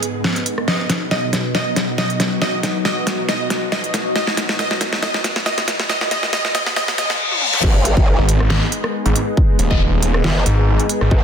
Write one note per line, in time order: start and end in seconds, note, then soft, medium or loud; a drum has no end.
0.00 0.64 G#2 medium
0.00 0.64 G#3 medium
0.00 7.16 B3 medium
0.00 7.20 B3 medium
0.00 0.64 D#4 medium
0.00 0.60 G#4 medium
0.00 1.88 G#4 medium
0.00 0.68 D#5 medium
0.00 closed hi-hat medium
0.00 riser medium
0.24 snare medium
0.36 closed hi-hat soft
0.46 closed hi-hat medium
0.58 cross-stick medium
0.68 7.16 B2 medium
0.68 7.16 F#3 medium
0.68 7.16 D#4 medium
0.68 1.03 D#5 medium
0.68 snare medium
0.89 7.20 D#5 medium
0.89 snare medium
0.89 closed hi-hat medium
1.01 7.20 F#4 medium
1.11 1.53 D#5 medium
1.11 snare medium
1.33 snare medium
1.33 closed hi-hat medium
1.55 1.90 D#5 medium
1.55 snare medium
1.76 snare medium
1.76 closed hi-hat medium
1.98 2.40 D#5 medium
1.98 snare medium
2.10 closed hi-hat soft
2.20 snare medium
2.20 closed hi-hat medium
2.42 2.77 D#5 medium
2.42 snare medium
2.63 snare medium
2.63 closed hi-hat medium
2.85 3.27 D#5 medium
2.85 snare medium
3.07 snare medium
3.07 closed hi-hat medium
3.29 3.64 D#5 medium
3.29 snare medium
3.50 snare medium
3.50 closed hi-hat medium
3.72 4.14 D#5 medium
3.72 snare medium
3.84 closed hi-hat soft
3.94 snare medium
3.94 closed hi-hat medium
4.16 4.51 D#5 medium
4.16 snare medium
4.27 snare medium
4.37 snare medium
4.37 closed hi-hat medium
4.49 snare medium
4.59 4.94 D#5 loud
4.59 snare medium
4.71 snare medium
4.81 snare loud
4.81 closed hi-hat medium
4.93 snare medium
5.03 5.38 D#5 medium
5.03 snare loud
5.14 snare medium
5.24 snare loud
5.24 closed hi-hat medium
5.36 snare medium
5.46 5.81 D#5 loud
5.46 snare loud
5.58 snare medium
5.58 closed hi-hat soft
5.68 snare loud
5.68 closed hi-hat medium
5.80 snare medium
5.89 6.10 D#5 loud
5.89 snare loud
6.01 snare medium
6.11 6.31 D#5 loud
6.11 snare loud
6.11 closed hi-hat medium
6.23 snare medium
6.33 6.53 D#5 loud
6.33 snare loud
6.45 snare medium
6.55 6.75 D#5 loud
6.55 snare loud
6.55 closed hi-hat medium
6.66 snare loud
6.76 6.97 D#5 loud
6.76 snare loud
6.76 reverse cymbal medium
6.88 snare medium
6.98 7.18 D#5 loud
6.98 snare loud
6.98 closed hi-hat medium
7.10 snare loud
7.32 high tom medium
7.42 mid tom medium
7.53 snare medium
7.63 7.95 G#1 medium
7.63 11.24 G#3 medium
7.63 11.24 B3 medium
7.63 11.24 D#4 medium
7.63 kick loud
7.63 crash loud
7.81 11.24 G#4 medium
7.81 closed hi-hat medium
7.97 8.17 G#1 loud
7.97 kick loud
8.19 8.60 G#1 loud
8.29 closed hi-hat medium
8.40 cross-stick medium
8.50 8.61 B3 medium
8.50 8.61 G#4 loud
8.50 8.61 D#5 medium
8.50 snare loud
8.72 closed hi-hat medium
8.84 cross-stick medium
9.06 9.14 G#1 loud
9.06 closed hi-hat soft
9.16 closed hi-hat medium
9.37 kick loud
9.59 10.23 D#1 loud
9.59 closed hi-hat medium
9.71 9.80 B3 medium
9.71 9.80 G#4 medium
9.71 9.80 D#5 loud
9.71 kick loud
10.03 closed hi-hat medium
10.14 cross-stick medium
10.24 10.44 F#1 loud
10.24 snare loud
10.46 10.78 G#1 loud
10.46 closed hi-hat medium
10.80 closed hi-hat soft
10.89 closed hi-hat medium
11.01 11.10 G#1 loud
11.01 cross-stick medium
11.11 11.24 G#1 loud
11.11 kick loud